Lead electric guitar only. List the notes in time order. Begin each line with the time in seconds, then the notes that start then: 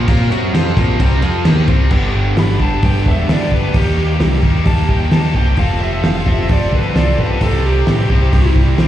2.39 B5
2.62 A5
2.85 G5
3.08 E5
3.32 D5
3.54 B4
3.76 G4
4.67 A5
4.91 G5
5.13 A5
5.36 G5
5.59 F5
5.81 E5
6.06 F5
6.28 E5
6.52 D5
6.74 B4
6.97 D5
7.19 B4
7.44 A4
7.66 G4